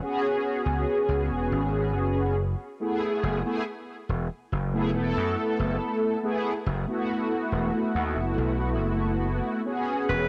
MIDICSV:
0, 0, Header, 1, 4, 480
1, 0, Start_track
1, 0, Key_signature, 3, "minor"
1, 0, Tempo, 857143
1, 1570, Time_signature, 4, 2, 24, 8
1, 5760, End_track
2, 0, Start_track
2, 0, Title_t, "Alto saxophone"
2, 0, Program_c, 0, 65
2, 5650, Note_on_c, 0, 71, 99
2, 5760, Note_off_c, 0, 71, 0
2, 5760, End_track
3, 0, Start_track
3, 0, Title_t, "Analog polysynth"
3, 0, Program_c, 1, 90
3, 3, Note_on_c, 1, 59, 92
3, 7, Note_on_c, 1, 61, 82
3, 13, Note_on_c, 1, 66, 79
3, 19, Note_on_c, 1, 68, 102
3, 1311, Note_off_c, 1, 59, 0
3, 1313, Note_off_c, 1, 61, 0
3, 1316, Note_off_c, 1, 66, 0
3, 1319, Note_off_c, 1, 68, 0
3, 1566, Note_on_c, 1, 57, 79
3, 1568, Note_on_c, 1, 59, 75
3, 1571, Note_on_c, 1, 64, 74
3, 1574, Note_on_c, 1, 68, 90
3, 1900, Note_off_c, 1, 57, 0
3, 1901, Note_off_c, 1, 59, 0
3, 1903, Note_off_c, 1, 64, 0
3, 1904, Note_off_c, 1, 68, 0
3, 1930, Note_on_c, 1, 57, 92
3, 1931, Note_on_c, 1, 59, 83
3, 1935, Note_on_c, 1, 64, 86
3, 1938, Note_on_c, 1, 68, 103
3, 2031, Note_off_c, 1, 57, 0
3, 2031, Note_off_c, 1, 59, 0
3, 2033, Note_off_c, 1, 64, 0
3, 2035, Note_off_c, 1, 68, 0
3, 2648, Note_on_c, 1, 57, 92
3, 2651, Note_on_c, 1, 59, 85
3, 2652, Note_on_c, 1, 64, 86
3, 2656, Note_on_c, 1, 68, 103
3, 2740, Note_off_c, 1, 57, 0
3, 2741, Note_off_c, 1, 59, 0
3, 2742, Note_off_c, 1, 64, 0
3, 2744, Note_off_c, 1, 68, 0
3, 2763, Note_on_c, 1, 57, 82
3, 2767, Note_on_c, 1, 59, 73
3, 2772, Note_on_c, 1, 64, 70
3, 2780, Note_on_c, 1, 69, 89
3, 3458, Note_off_c, 1, 57, 0
3, 3460, Note_off_c, 1, 59, 0
3, 3463, Note_off_c, 1, 64, 0
3, 3466, Note_off_c, 1, 69, 0
3, 3487, Note_on_c, 1, 57, 99
3, 3490, Note_on_c, 1, 59, 90
3, 3493, Note_on_c, 1, 64, 85
3, 3495, Note_on_c, 1, 68, 108
3, 3652, Note_off_c, 1, 57, 0
3, 3654, Note_off_c, 1, 59, 0
3, 3655, Note_off_c, 1, 64, 0
3, 3656, Note_off_c, 1, 68, 0
3, 3844, Note_on_c, 1, 57, 92
3, 3850, Note_on_c, 1, 59, 81
3, 3856, Note_on_c, 1, 64, 83
3, 3860, Note_on_c, 1, 66, 101
3, 5378, Note_off_c, 1, 57, 0
3, 5381, Note_off_c, 1, 59, 0
3, 5383, Note_off_c, 1, 64, 0
3, 5386, Note_off_c, 1, 66, 0
3, 5403, Note_on_c, 1, 59, 80
3, 5405, Note_on_c, 1, 61, 71
3, 5408, Note_on_c, 1, 66, 73
3, 5412, Note_on_c, 1, 68, 87
3, 5739, Note_off_c, 1, 59, 0
3, 5740, Note_off_c, 1, 61, 0
3, 5741, Note_off_c, 1, 66, 0
3, 5743, Note_off_c, 1, 68, 0
3, 5760, End_track
4, 0, Start_track
4, 0, Title_t, "Slap bass"
4, 0, Program_c, 2, 36
4, 368, Note_on_c, 2, 37, 79
4, 471, Note_off_c, 2, 37, 0
4, 608, Note_on_c, 2, 37, 84
4, 732, Note_off_c, 2, 37, 0
4, 732, Note_on_c, 2, 28, 88
4, 831, Note_off_c, 2, 28, 0
4, 850, Note_on_c, 2, 32, 95
4, 1092, Note_off_c, 2, 32, 0
4, 1092, Note_on_c, 2, 30, 92
4, 1422, Note_off_c, 2, 30, 0
4, 1810, Note_on_c, 2, 30, 101
4, 1912, Note_off_c, 2, 30, 0
4, 2290, Note_on_c, 2, 28, 77
4, 2393, Note_off_c, 2, 28, 0
4, 2532, Note_on_c, 2, 30, 80
4, 2771, Note_off_c, 2, 30, 0
4, 2771, Note_on_c, 2, 28, 81
4, 2873, Note_off_c, 2, 28, 0
4, 2895, Note_on_c, 2, 42, 83
4, 2993, Note_off_c, 2, 42, 0
4, 3133, Note_on_c, 2, 30, 87
4, 3232, Note_off_c, 2, 30, 0
4, 3731, Note_on_c, 2, 30, 98
4, 3833, Note_off_c, 2, 30, 0
4, 4211, Note_on_c, 2, 28, 80
4, 4313, Note_off_c, 2, 28, 0
4, 4452, Note_on_c, 2, 39, 83
4, 4572, Note_on_c, 2, 30, 81
4, 4581, Note_off_c, 2, 39, 0
4, 4672, Note_off_c, 2, 30, 0
4, 4692, Note_on_c, 2, 35, 92
4, 4930, Note_off_c, 2, 35, 0
4, 4930, Note_on_c, 2, 30, 96
4, 5261, Note_off_c, 2, 30, 0
4, 5650, Note_on_c, 2, 28, 96
4, 5753, Note_off_c, 2, 28, 0
4, 5760, End_track
0, 0, End_of_file